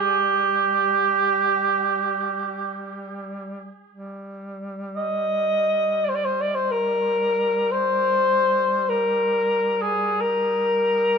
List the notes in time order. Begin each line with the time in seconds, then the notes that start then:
Already playing: G3
0.00 G4
3.90 G3
4.96 D#5
6.04 D5
6.09 C5
6.15 D5
6.25 C5
6.41 D5
6.55 C5
6.71 A#4
7.71 C5
8.89 A#4
9.82 G#4
10.21 A#4